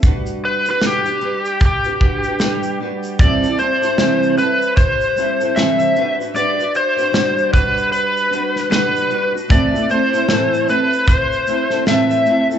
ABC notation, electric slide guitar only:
X:1
M:4/4
L:1/16
Q:"Swing 16ths" 1/4=76
K:G
V:1 name="Electric slide guitar"
z2 B B G4 G6 z2 | d2 c4 B2 c4 e3 z | d2 c4 B2 B4 B3 z | d2 c4 B2 c4 e3 z |]